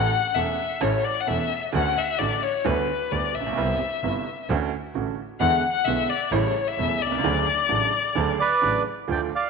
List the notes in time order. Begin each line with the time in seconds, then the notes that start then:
Already playing: F#5
0.34 E1 E2 E3 A3 C#4 A4 E5
0.80 A1 A2 E3 A3 C#4 A4 C#5
1.04 D5
1.21 F#5
1.26 E1 E2 E3 A3 C#4 A4 E5
1.72 D2 D3 A3 C#4 F#4 F#5
1.98 E5
2.18 A1 A2 D3 A3 C#4 F#4 D5
2.43 C#5
2.64 D2 D3 G3 B3 F#4 B4
3.11 D2 D3 G3 B3 F#4 D5
3.35 A#1 E5
3.41 A1
3.46 A#1
3.52 B1
3.57 C2 C3 G3 B3 E4
4.03 G1 G2 C3 G3 B3 E4
4.49 D2 D3 A3 C#4 F#4
4.95 A1 A2 D3 A3 C#4 F#4
5.40 E2 D3 E3 G#3 B3 E4 F#5
5.72 F#5
5.85 B1 B2 D3 G#3 B3 E4 E5
6.10 D5
6.31 A1 A2 C#3 G3 A3 E4 C#5
6.67 E5
6.78 E1 E2 C#3 G3 A3 E4
7.00 C2 D5
7.06 B1
7.11 C2
7.18 C#2
7.23 D2 C#3 D3 F#3 A3 D4
7.69 A1 A2 C#3 F#3 A3 D4
8.15 D2 C#3 D3 F#3 A3 D4
8.40 B4 D5
8.62 A1 A2 C#3 F#3 A3 D4
9.08 D2 D3 F3 A3 F4 G5
9.12 D5
9.35 D5 F5